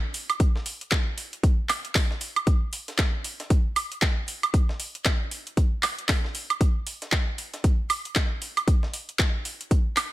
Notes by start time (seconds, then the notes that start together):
0.14 closed hi-hat, open hi-hat
0.30 closed hi-hat, high woodblock
0.40 kick, closed hi-hat
0.56 snare
0.66 closed hi-hat, open hi-hat
0.81 closed hi-hat
0.91 kick, snare, clap, closed hi-hat
1.18 closed hi-hat, open hi-hat
1.33 closed hi-hat
1.43 kick, closed hi-hat
1.69 clap, closed hi-hat, open hi-hat, high woodblock
1.85 closed hi-hat
1.95 kick, snare, clap, closed hi-hat, open hi-hat
2.11 snare
2.21 closed hi-hat, open hi-hat
2.36 closed hi-hat, high woodblock
2.47 kick, closed hi-hat
2.73 closed hi-hat, open hi-hat
2.88 snare, closed hi-hat
2.98 kick, snare, clap, closed hi-hat
3.24 closed hi-hat, open hi-hat
3.40 snare, closed hi-hat
3.50 kick, closed hi-hat
3.76 closed hi-hat, open hi-hat, high woodblock
3.92 closed hi-hat
4.02 kick, snare, clap, closed hi-hat
4.28 closed hi-hat, open hi-hat
4.43 closed hi-hat, high woodblock
4.54 kick, closed hi-hat
4.69 snare
4.80 closed hi-hat, open hi-hat
4.95 closed hi-hat
5.05 kick, snare, clap, closed hi-hat
5.31 closed hi-hat, open hi-hat
5.47 closed hi-hat
5.57 kick, closed hi-hat
5.83 clap, closed hi-hat, open hi-hat, high woodblock
5.99 closed hi-hat
6.09 kick, snare, clap, closed hi-hat, open hi-hat
6.24 snare
6.35 closed hi-hat, open hi-hat
6.50 closed hi-hat, high woodblock
6.61 kick, closed hi-hat
6.87 closed hi-hat, open hi-hat
7.02 snare, closed hi-hat
7.12 kick, snare, clap, closed hi-hat
7.38 closed hi-hat, open hi-hat
7.54 snare, closed hi-hat
7.64 kick, closed hi-hat
7.90 closed hi-hat, open hi-hat, high woodblock
8.05 closed hi-hat
8.15 kick, snare, clap, closed hi-hat
8.42 closed hi-hat, open hi-hat
8.57 closed hi-hat, high woodblock
8.68 kick, closed hi-hat
8.83 snare
8.93 closed hi-hat, open hi-hat
9.09 closed hi-hat
9.19 kick, snare, clap, closed hi-hat
9.45 closed hi-hat, open hi-hat
9.61 closed hi-hat
9.71 kick, closed hi-hat
9.96 clap, closed hi-hat, open hi-hat, high woodblock